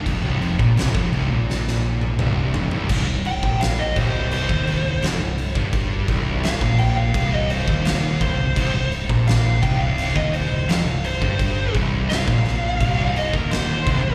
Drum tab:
CC |x-x-x-x---------|x-x-x-x-x-x-x-x-|x-x-x-x-x-x-x-x-|x-x-x-x-x-x-x-x-|
SD |----o---oo------|----o-------o---|----o-------o---|----o-------o---|
T1 |-----------o----|----------------|----------------|----------------|
T2 |------------o---|----------------|----------------|----------------|
FT |--------------oo|----------------|----------------|----------------|
BD |o--o-o----------|o--o--o--o-----o|o-o--o--o--o--o-|o--o--o--o-----o|

CC |x-x-x-x-x-x-x-x-|
SD |----o-o-----o---|
T1 |----------------|
T2 |----------------|
FT |----------------|
BD |o-o--o--o--o--o-|